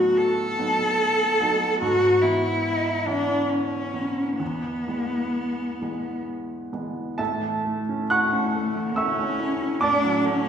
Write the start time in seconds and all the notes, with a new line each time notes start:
Already playing: A2 F#3 B3 D#4 F#4
0.18 A4
0.59 F#3 B3 D#4
1.40 F#3 B3 D#4
1.81 G#2 F#4
2.22 E3 B3 E4
3.07 E3 B3 D4
3.49 C#4
3.93 E3 B3
4.40 E2 B3
4.87 E3 G#3 B3
5.81 E3 G#3 B3
6.72 E3 G#3 B3
7.18 A2 A4 E5 A5
7.41 E3
7.65 A3
7.89 C#4
8.10 A3 E4 F#5 C#6 F#6
8.33 C#4
8.55 A3
8.76 E3
8.96 A3 C#4 E5 C#6 E6
9.19 C#4
9.40 E4
9.61 C#4
9.81 A2 D4 D5 A5 D6
10.04 F#3
10.25 A3 C#4